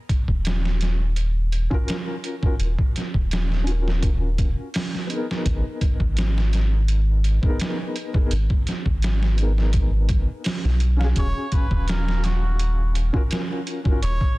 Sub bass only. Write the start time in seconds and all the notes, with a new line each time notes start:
0.29 D#1
2.60 D#1
3.15 D#1
5.46 G#1
6.00 G#1
8.32 G#1
8.86 G#1
10.65 B1
11.17 D#1
11.71 D#1
14.03 D#1